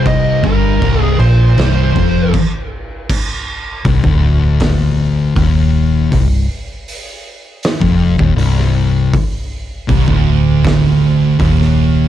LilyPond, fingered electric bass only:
\new Staff \with { instrumentName = "Fingered electric bass" } { \clef bass \time 4/4 \key c \minor \tempo 4 = 80 c,,8 g,,8 c,,8 bes,,8 c,,8 f,,8 r4 | r4 c,,16 d,,4.~ d,,16 ees,,4 | c,,8 r4. r16 f,,8 ees,,16 c,,4 | r4 c,,16 d,,4.~ d,,16 ees,,4 | }